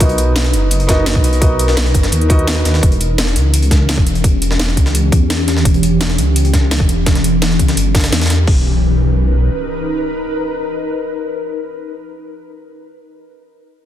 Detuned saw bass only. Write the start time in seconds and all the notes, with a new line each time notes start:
0.00 B1
0.53 F#1
1.15 B1
1.95 F#1
2.12 D#2
2.65 D#2
2.83 E1
3.36 C#2
3.98 E1
4.77 C#2
5.12 E2
5.65 E1
6.18 C#2
6.80 E1
7.59 C#2
7.77 G1
8.12 E2
8.47 B1